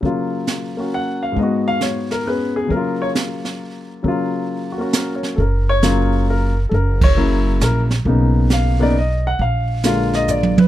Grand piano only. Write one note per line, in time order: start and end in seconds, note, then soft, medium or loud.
0.01 1.36 C#3 soft
0.01 1.37 F#3 soft
0.01 0.76 A#3 soft
0.06 1.38 F4 soft
0.77 1.37 A#3 soft
0.77 1.37 C#4 soft
0.77 1.38 F#4 soft
0.94 1.22 F#5 medium
1.23 1.37 F5 medium
1.32 2.68 G#2 soft
1.32 2.70 G#3 soft
1.39 2.24 B3 soft
1.39 1.66 D#5 soft
1.43 2.74 F#4 soft
1.68 1.82 F5 medium
1.82 2.10 C#5 medium
2.12 2.26 A#4 medium
2.26 2.71 B3 soft
2.26 2.71 C#4 soft
2.26 2.55 G#4 soft
2.26 2.55 B4 medium
2.56 2.70 G#4 medium
2.65 4.01 C#3 soft
2.65 4.02 F#3 soft
2.71 4.04 A#3 soft
2.71 3.00 A#4 medium
2.76 4.07 F4 medium
3.02 3.10 C#5 medium
4.03 5.37 C#3 soft
4.03 5.38 F#3 soft
4.03 4.76 A#3 soft
4.08 5.40 F4 medium
4.72 4.79 F#4 soft
4.78 5.38 A#3 soft
4.78 5.38 C#4 soft
4.78 5.39 F#4 soft
4.93 5.28 A#4 soft
5.15 5.47 C#5 soft
5.36 5.39 A4 soft
5.36 5.68 A#4 medium
5.69 6.24 C#5 medium
5.82 6.51 C#3 medium
5.82 6.51 F#3 medium
5.82 6.51 A#3 medium
5.82 6.51 F4 medium
6.30 6.57 A#4 medium
6.69 6.73 A4 soft
6.74 7.02 A#4 medium
7.04 7.58 C#5 medium
7.16 7.85 C#3 medium
7.16 7.85 F#3 soft
7.16 7.85 A#3 soft
7.16 7.85 E4 medium
7.64 7.81 A#4 medium
8.06 8.74 C#3 medium
8.06 8.74 A#3 soft
8.06 8.75 B3 soft
8.06 8.75 D#4 soft
8.53 8.80 F5 medium
8.79 8.93 C#3 medium
8.79 8.94 A#3 medium
8.79 8.94 B3 medium
8.79 8.94 D#4 medium
8.79 8.96 D5 medium
8.98 9.25 D#5 medium
9.27 9.40 F#5 medium
9.41 10.11 F5 medium
9.84 10.52 D3 medium
9.84 10.53 G#3 medium
9.84 10.53 A#3 medium
9.84 10.53 F4 medium
10.15 10.29 D#5 medium
10.30 10.58 D5 medium
10.59 10.68 B4 medium